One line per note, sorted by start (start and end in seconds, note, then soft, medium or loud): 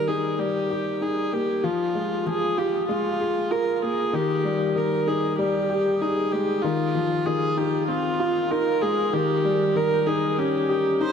0.00 1.66 D#3 medium
0.00 0.39 G3 medium
0.07 0.37 D#4 medium
0.07 0.40 G#4 medium
0.39 0.68 G3 medium
0.39 1.03 G4 medium
0.70 1.00 G4 medium
1.01 1.31 D#4 medium
1.01 1.35 G#4 medium
1.33 1.62 A#3 medium
1.33 1.65 G4 medium
1.64 1.93 F3 medium
1.64 2.28 F4 medium
1.95 2.25 G#3 medium
2.27 2.56 F3 medium
2.27 2.59 G#4 loud
2.58 2.87 F4 medium
2.58 2.89 G4 medium
2.89 3.18 G#3 medium
2.89 3.52 F4 medium
3.20 3.50 G#4 medium
3.51 3.81 F4 medium
3.51 3.76 A#4 medium
3.76 3.84 A#4 medium
3.82 4.12 A#3 medium
3.82 4.16 G#4 medium
4.13 4.43 D#3 medium
4.13 4.79 G4 loud
4.45 4.74 G3 medium
4.76 5.06 D#3 medium
4.76 5.09 A#4 medium
5.07 5.37 D#4 medium
5.07 5.39 G#4 medium
5.39 5.68 G3 medium
5.39 6.03 G4 medium
5.70 5.99 G4 medium
6.01 6.31 D#4 medium
6.01 6.34 G#4 medium
6.32 6.62 G#3 medium
6.32 6.63 G4 medium
6.62 6.94 D#3 medium
6.62 7.27 F4 medium
6.95 7.25 F3 medium
7.25 7.56 D#3 medium
7.25 7.59 G#4 medium
7.57 7.87 D#4 medium
7.57 7.88 G4 medium
7.88 8.18 C4 medium
7.88 8.52 F4 medium
8.20 8.50 F4 medium
8.51 8.81 D#4 medium
8.51 8.83 A#4 loud
8.81 9.12 G#3 medium
8.81 9.15 G#4 medium
9.13 9.43 D#3 medium
9.13 9.77 G4 loud
9.45 9.75 G3 medium
9.76 10.06 D#3 medium
9.76 10.08 A#4 loud
10.06 10.37 D#4 medium
10.06 10.40 G#4 medium
10.38 10.68 C#4 medium
10.38 11.03 G4 medium
10.69 10.99 G4 medium
11.01 11.12 D#4 medium
11.01 11.12 C5 loud